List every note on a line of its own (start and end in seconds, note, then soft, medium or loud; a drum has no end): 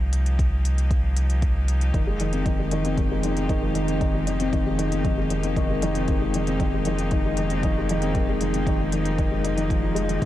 0.00 1.92 C2 medium
0.00 10.25 F3 medium
0.00 10.25 A#3 medium
0.00 10.25 D#4 medium
0.00 10.22 G4 medium
0.13 closed hi-hat medium
0.26 closed hi-hat soft
0.39 kick medium
0.39 closed hi-hat soft
0.65 closed hi-hat medium
0.78 closed hi-hat soft
0.91 kick loud
0.91 closed hi-hat soft
1.17 closed hi-hat medium
1.30 closed hi-hat soft
1.42 kick medium
1.42 closed hi-hat soft
1.68 closed hi-hat medium
1.81 closed hi-hat soft
1.94 10.19 F1 medium
1.94 2.02 D#3 medium
1.94 kick loud
1.94 closed hi-hat soft
2.07 2.19 G#3 medium
2.20 2.33 D#3 medium
2.20 closed hi-hat medium
2.33 2.45 C4 medium
2.33 closed hi-hat soft
2.46 2.58 D#3 medium
2.46 kick medium
2.46 closed hi-hat soft
2.59 2.66 G#3 medium
2.71 2.79 D#3 medium
2.71 closed hi-hat medium
2.85 2.97 C4 medium
2.85 closed hi-hat soft
2.97 3.10 D#3 medium
2.97 kick medium
2.97 closed hi-hat soft
3.11 3.18 G#3 medium
3.23 3.36 D#3 medium
3.23 closed hi-hat medium
3.37 3.44 C4 medium
3.37 closed hi-hat soft
3.49 3.62 D#3 medium
3.49 kick medium
3.49 closed hi-hat soft
3.62 3.75 G#3 medium
3.75 3.83 D#3 medium
3.75 closed hi-hat medium
3.88 4.01 C4 medium
3.88 closed hi-hat soft
4.01 4.08 D#3 medium
4.01 kick medium
4.01 closed hi-hat soft
4.14 4.26 G#3 medium
4.27 4.39 D#3 medium
4.27 closed hi-hat medium
4.40 4.53 C4 medium
4.40 closed hi-hat soft
4.53 4.65 D#3 medium
4.53 kick medium
4.53 closed hi-hat soft
4.66 4.73 G#3 medium
4.79 4.86 D#3 medium
4.79 closed hi-hat medium
4.92 5.04 C4 medium
4.92 closed hi-hat soft
5.05 5.17 D#3 medium
5.05 kick medium
5.05 closed hi-hat soft
5.17 5.25 G#3 medium
5.30 5.43 D#3 medium
5.30 closed hi-hat medium
5.43 5.51 C4 medium
5.43 closed hi-hat soft
5.56 5.69 D#3 medium
5.56 kick medium
5.56 closed hi-hat soft
5.70 5.82 G#3 medium
5.82 5.90 D#3 medium
5.82 closed hi-hat medium
5.95 6.08 C4 medium
5.95 closed hi-hat soft
6.08 6.16 D#3 medium
6.08 kick medium
6.08 closed hi-hat soft
6.22 6.34 G#3 medium
6.34 6.47 D#3 medium
6.34 closed hi-hat medium
6.47 6.59 C4 medium
6.47 closed hi-hat soft
6.60 6.72 D#3 medium
6.60 kick medium
6.60 closed hi-hat soft
6.74 6.81 G#3 medium
6.85 6.93 D#3 medium
6.85 closed hi-hat medium
6.99 7.11 C4 medium
6.99 closed hi-hat soft
7.11 7.24 D#3 medium
7.11 kick medium
7.11 closed hi-hat soft
7.25 7.32 G#3 medium
7.37 7.50 D#3 medium
7.37 closed hi-hat medium
7.50 7.58 C4 medium
7.50 closed hi-hat soft
7.63 7.76 D#3 loud
7.63 kick medium
7.63 closed hi-hat soft
7.78 7.89 G#3 medium
7.89 7.97 D#3 medium
7.89 closed hi-hat medium
8.02 8.15 C4 medium
8.02 closed hi-hat soft
8.15 8.23 D#3 medium
8.15 kick medium
8.15 closed hi-hat soft
8.28 8.40 G#3 medium
8.41 8.53 D#3 medium
8.41 closed hi-hat medium
8.54 8.66 C4 medium
8.54 closed hi-hat soft
8.67 8.79 D#3 medium
8.67 kick medium
8.67 closed hi-hat soft
8.80 8.87 G#3 medium
8.92 9.00 D#3 medium
8.92 closed hi-hat medium
9.05 9.18 C4 medium
9.05 closed hi-hat soft
9.18 9.31 D#3 medium
9.18 kick medium
9.18 closed hi-hat soft
9.31 9.39 G#3 medium
9.44 9.57 D#4 medium
9.44 closed hi-hat medium
9.57 9.69 D#3 medium
9.57 closed hi-hat soft
9.69 9.81 F3 medium
9.69 kick medium
9.69 closed hi-hat soft
9.82 9.95 F3 medium
9.95 10.03 G#3 medium
9.95 closed hi-hat medium
10.09 10.21 D#3 medium
10.09 closed hi-hat soft
10.22 10.25 A#1 medium
10.22 10.25 F3 medium
10.22 kick loud
10.22 closed hi-hat soft